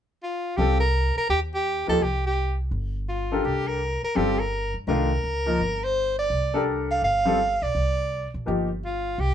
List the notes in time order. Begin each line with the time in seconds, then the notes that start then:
0.23 F4
0.57 C2 G3 C4 F4 G4 A4
0.80 A#4
1.16 A#4, muted upright bass stroke
1.29 D#2 G4
1.54 G4
1.87 D2 F3 A#3 D#4 G4 A4
2.01 C2 G4
2.26 G4
2.71 G1
3.09 F4
3.32 D4 G4 A4 A#4
3.44 C2 G4
3.68 A#4
4.03 A#4, muted upright bass stroke
4.15 G1 G3 C4 F4 G4 A4
4.39 A#4
4.74 G2
4.87 C2 D#3 A3 D4 F4 A#4
5.24 C#2
5.46 F3 A#3 D#4 A#4
5.59 G1
5.84 C5
6.19 D5
6.30 C2
6.54 D4 G4 A4 A#4
6.91 F5
7.02 G1 F5
7.25 G3 C4 F4 A4
7.62 B1 D5
7.75 C2
8.34 A#1
8.46 G1 F3 A#3 D#4 G4
8.85 F4
9.18 C2 G4